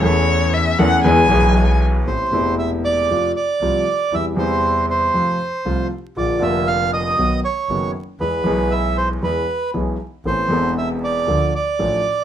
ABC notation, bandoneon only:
X:1
M:4/4
L:1/8
Q:1/4=118
K:Emix
V:1 name="Bandoneon"
z8 | [K:Am] c2 e d2 d3 | e c2 c4 z | d e f ^d2 ^c2 z |
B2 e c B2 z2 | c2 e d2 d3 |]